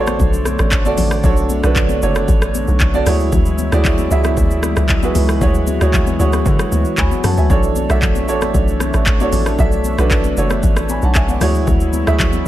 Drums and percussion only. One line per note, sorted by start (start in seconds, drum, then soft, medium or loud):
0.07 cross-stick loud
0.07 high conga medium
0.07 shaker medium
0.19 kick loud
0.19 low conga medium
0.19 shaker medium
0.33 shaker medium
0.45 cross-stick medium
0.45 high conga medium
0.45 shaker loud
0.59 cross-stick loud
0.59 shaker soft
0.71 kick medium
0.71 clap loud
0.71 shaker medium
0.85 high conga medium
0.85 shaker medium
0.97 open hi-hat medium
0.97 high conga medium
0.97 low conga medium
0.97 shaker loud
1.11 cross-stick loud
1.11 shaker medium
1.24 kick loud
1.24 low conga medium
1.24 shaker medium
1.37 shaker medium
1.49 high conga medium
1.49 shaker loud
1.64 cross-stick medium
1.64 shaker medium
1.76 kick medium
1.76 clap medium
1.76 low conga medium
1.76 shaker medium
1.89 high conga medium
1.89 shaker medium
2.02 shaker medium
2.15 cross-stick medium
2.15 high conga medium
2.15 shaker medium
2.28 kick loud
2.28 low conga medium
2.28 shaker medium
2.42 cross-stick loud
2.42 shaker medium
2.55 high conga medium
2.55 shaker loud
2.68 shaker soft
2.80 kick medium
2.80 clap medium
2.80 shaker medium
2.94 high conga medium
2.94 shaker medium
3.06 cross-stick medium
3.06 open hi-hat medium
3.06 high conga medium
3.06 low conga medium
3.06 shaker loud
3.20 shaker soft
3.32 kick loud
3.32 low conga medium
3.32 shaker medium
3.46 shaker medium
3.58 high conga medium
3.58 shaker loud
3.72 cross-stick loud
3.72 shaker medium
3.85 kick medium
3.85 clap medium
3.85 low conga medium
3.85 shaker medium
3.98 high conga medium
3.98 shaker medium
4.11 shaker medium
4.24 cross-stick loud
4.24 high conga medium
4.24 shaker medium
4.37 kick loud
4.37 low conga medium
4.37 shaker medium
4.51 shaker medium
4.63 cross-stick loud
4.63 high conga medium
4.63 shaker loud
4.76 cross-stick loud
4.76 shaker soft
4.89 kick medium
4.89 clap medium
4.89 shaker medium
5.03 high conga medium
5.03 shaker medium
5.15 open hi-hat medium
5.15 high conga medium
5.15 low conga medium
5.15 shaker loud
5.29 cross-stick loud
5.29 shaker medium
5.41 kick loud
5.41 low conga medium
5.41 shaker medium
5.54 shaker medium
5.67 high conga medium
5.67 shaker loud
5.81 cross-stick loud
5.81 shaker medium
5.93 kick loud
5.93 clap medium
5.93 low conga medium
5.93 shaker medium
6.07 high conga medium
6.07 shaker medium
6.20 shaker medium
6.33 cross-stick loud
6.33 high conga medium
6.33 shaker medium
6.46 kick loud
6.46 low conga medium
6.46 shaker medium
6.59 cross-stick loud
6.59 shaker medium
6.72 high conga medium
6.72 shaker loud
6.85 shaker soft
6.97 kick medium
6.97 clap loud
6.97 shaker medium
7.11 high conga medium
7.11 shaker medium
7.24 cross-stick medium
7.24 open hi-hat medium
7.24 high conga medium
7.24 low conga medium
7.24 shaker loud
7.37 shaker soft
7.50 kick loud
7.50 low conga medium
7.50 shaker medium
7.63 shaker medium
7.76 high conga medium
7.76 shaker loud
7.90 cross-stick loud
7.90 shaker medium
8.02 kick loud
8.02 clap medium
8.02 low conga medium
8.02 shaker medium
8.15 high conga medium
8.15 shaker medium
8.28 shaker medium
8.41 cross-stick loud
8.41 high conga medium
8.41 shaker medium
8.54 kick loud
8.54 low conga medium
8.54 shaker medium
8.68 shaker medium
8.80 cross-stick loud
8.80 high conga medium
8.80 shaker loud
8.94 cross-stick medium
8.94 shaker soft
9.06 kick medium
9.06 clap loud
9.06 shaker medium
9.20 high conga medium
9.20 shaker medium
9.32 open hi-hat medium
9.32 high conga medium
9.32 low conga medium
9.32 shaker loud
9.46 cross-stick loud
9.46 shaker soft
9.59 kick loud
9.59 low conga medium
9.59 shaker medium
9.72 shaker medium
9.84 high conga medium
9.84 shaker loud
9.98 cross-stick medium
9.98 shaker medium
10.11 kick medium
10.11 clap loud
10.11 low conga medium
10.11 shaker medium
10.24 high conga medium
10.24 shaker medium
10.37 shaker medium
10.50 cross-stick loud
10.50 high conga medium
10.50 shaker medium
10.63 kick loud
10.63 low conga medium
10.63 shaker medium
10.76 cross-stick loud
10.76 shaker medium
10.89 high conga medium
10.89 shaker loud
11.02 shaker soft
11.14 kick medium
11.14 clap loud
11.14 shaker medium
11.29 high conga medium
11.29 shaker medium
11.41 cross-stick medium
11.41 open hi-hat medium
11.41 high conga medium
11.41 low conga medium
11.41 shaker loud
11.55 shaker soft
11.67 kick loud
11.67 low conga medium
11.67 shaker medium
11.80 shaker medium
11.93 high conga medium
11.93 shaker loud
12.07 cross-stick loud
12.07 shaker medium
12.19 kick medium
12.19 clap loud
12.19 low conga medium
12.19 shaker medium
12.33 high conga medium
12.33 shaker soft